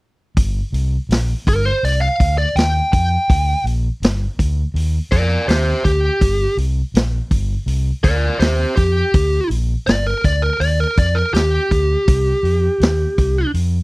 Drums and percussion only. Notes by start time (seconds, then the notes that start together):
0.37 kick, open hi-hat
0.74 open hi-hat
1.11 snare, open hi-hat
1.47 kick, open hi-hat
1.85 open hi-hat
2.20 kick, open hi-hat
2.57 snare, open hi-hat
2.93 kick, open hi-hat
3.30 kick, open hi-hat
3.67 open hi-hat
4.03 snare, open hi-hat
4.39 kick, open hi-hat
4.76 open hi-hat
5.12 kick, open hi-hat
5.49 snare, open hi-hat
5.85 kick, open hi-hat
6.21 kick, open hi-hat
6.58 open hi-hat
6.95 snare, open hi-hat
7.31 kick, open hi-hat
7.68 open hi-hat
8.04 kick, open hi-hat
8.40 snare, open hi-hat
8.77 kick, open hi-hat
9.14 kick, open hi-hat
9.51 open hi-hat
9.87 snare, open hi-hat
10.24 kick, open hi-hat
10.61 open hi-hat
10.97 kick, open hi-hat
11.34 snare, open hi-hat
11.71 kick, open hi-hat
12.08 kick, open hi-hat
12.45 open hi-hat
12.81 snare, open hi-hat
13.18 kick, open hi-hat
13.54 open hi-hat